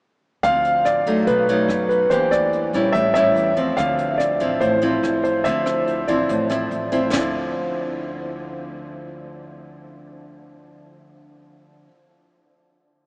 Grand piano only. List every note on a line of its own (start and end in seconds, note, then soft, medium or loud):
0.43 0.87 F5 loud
0.85 1.28 D5 medium
1.27 1.87 B4 medium
1.89 2.11 B4 medium
2.10 2.32 C5 medium
2.31 2.70 D5 medium
2.92 3.12 E5 medium
3.14 3.53 E5 medium
3.77 4.20 F5 medium
4.18 4.58 D5 medium
4.60 5.22 C5 medium
5.24 5.46 C5 medium
5.44 6.10 E5 medium
6.07 6.47 D5 medium